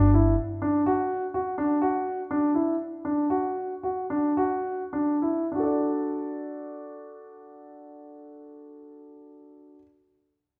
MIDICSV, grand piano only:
0, 0, Header, 1, 2, 480
1, 0, Start_track
1, 0, Key_signature, 2, "major"
1, 0, Tempo, 482315
1, 374, Time_signature, 5, 2, 24, 8
1, 2777, Tempo, 522193
1, 4217, Tempo, 574713
1, 5177, Tempo, 602410
1, 9232, End_track
2, 0, Start_track
2, 0, Title_t, "Grand piano"
2, 0, Program_c, 0, 0
2, 140, Note_on_c, 0, 64, 55
2, 323, Note_off_c, 0, 64, 0
2, 615, Note_on_c, 0, 62, 55
2, 798, Note_off_c, 0, 62, 0
2, 859, Note_on_c, 0, 66, 60
2, 1226, Note_off_c, 0, 66, 0
2, 1336, Note_on_c, 0, 66, 56
2, 1517, Note_off_c, 0, 66, 0
2, 1571, Note_on_c, 0, 62, 58
2, 1754, Note_off_c, 0, 62, 0
2, 1808, Note_on_c, 0, 66, 61
2, 2182, Note_off_c, 0, 66, 0
2, 2296, Note_on_c, 0, 62, 53
2, 2482, Note_off_c, 0, 62, 0
2, 2533, Note_on_c, 0, 64, 52
2, 2725, Note_off_c, 0, 64, 0
2, 3014, Note_on_c, 0, 62, 49
2, 3194, Note_off_c, 0, 62, 0
2, 3246, Note_on_c, 0, 66, 54
2, 3617, Note_off_c, 0, 66, 0
2, 3737, Note_on_c, 0, 66, 48
2, 3922, Note_off_c, 0, 66, 0
2, 3982, Note_on_c, 0, 62, 52
2, 4171, Note_off_c, 0, 62, 0
2, 4229, Note_on_c, 0, 66, 58
2, 4589, Note_off_c, 0, 66, 0
2, 4695, Note_on_c, 0, 62, 49
2, 4880, Note_off_c, 0, 62, 0
2, 4938, Note_on_c, 0, 64, 46
2, 5128, Note_off_c, 0, 64, 0
2, 5185, Note_on_c, 0, 62, 41
2, 5213, Note_on_c, 0, 66, 42
2, 5249, Note_on_c, 0, 69, 41
2, 5279, Note_on_c, 0, 74, 40
2, 8545, Note_off_c, 0, 62, 0
2, 8573, Note_off_c, 0, 66, 0
2, 8609, Note_off_c, 0, 69, 0
2, 8639, Note_off_c, 0, 74, 0
2, 9232, End_track
0, 0, End_of_file